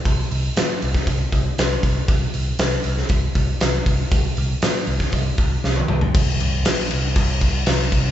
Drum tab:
CC |----------------|----------------|----------------|x-x-x-x-x-x-x-x-|
HH |o-o-o-o-o-o-o-o-|o-o-o-o-o-o-o-o-|o-o-o-o-o-o-----|----------------|
SD |----o--o----o---|----o--o----o---|----o--o----o---|----o-------o---|
T1 |----------------|----------------|-------------o--|----------------|
T2 |----------------|----------------|--------------o-|----------------|
FT |----------------|----------------|---------------o|----------------|
BD |o------oo-o---o-|o-------o-o---o-|o------oo-o-----|o-------o-o---o-|